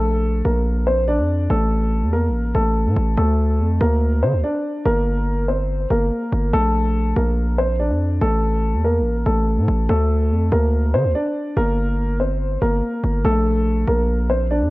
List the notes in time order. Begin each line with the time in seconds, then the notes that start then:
Already playing: A#1 A3 A4
0.45 A#1 A#3 A#4
0.87 C4 C5
1.08 D4 D5
1.19 F2
1.50 A1 A3 A4
2.02 E2
2.13 A#3 A#4
2.29 A1
2.55 A1 A3 A4
2.86 A2
2.97 A1
3.18 D2 A3 A4
3.60 F2
3.81 D2 A#3 A#4
4.23 D3 C4 C5
4.33 D2
4.44 D4 D5
4.85 G1 A#3 A#4
5.49 C4 C5
5.90 G1 A#3 A#4
6.32 G1
6.53 A#1 A3 A4
7.16 A#1 A#3 A#4
7.58 C4 C5
7.79 D4 D5
7.90 F2
8.21 A1 A3 A4
8.74 E2
8.84 A#3 A#4
9.00 A1
9.26 A1 A3 A4
9.58 A2
9.68 A1
9.89 D2 A3 A4
10.31 F2
10.52 D2 A#3 A#4
10.94 D3 C4 C5
11.04 D2
11.15 D4 D5
11.57 G1 A#3 A#4
12.20 C4 C5
12.62 G1 A#3 A#4
13.04 G1
13.25 A#1 A3 A4
13.87 A#1 A#3 A#4
14.30 C4 C5
14.51 D4 D5
14.61 F2